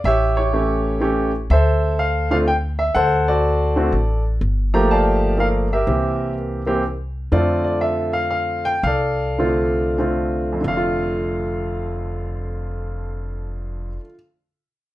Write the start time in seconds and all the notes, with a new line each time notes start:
0.04 A1 G4 C#5 E5
0.37 E4 G4 C#5
0.53 E3 A3 C#4 G4
1.00 E3 A3 C#4 G4
1.50 D2 A4 C5 E5
1.99 F5
2.31 D3 A3 C4 F4 F5
2.48 G5
2.79 E5
2.95 D2 A4 C5 F#5
3.28 F#4 A4 D5
3.76 D3 A3 C4 F#4
3.92 A1
4.41 G1
4.74 F3 A3 A#3 G4 A#5
4.91 D5 F5 A5
5.38 F3 A3 A#3 A#4 F5
5.73 G4 A#4 E5
5.87 C2 E3 A#3 C4 G4
6.66 E3 A#3 C4 G4
7.32 F2 D3 A3 C4 F4 A4 D5
7.64 D5
7.81 E5
8.13 F5
8.31 F5
8.65 G5
8.83 C2 A4 D5 F5
9.38 D3 A3 C4 F4
9.98 D3 A3 C4 F4
10.52 F2
10.61 F1 D3
10.68 A3 F5
10.77 F4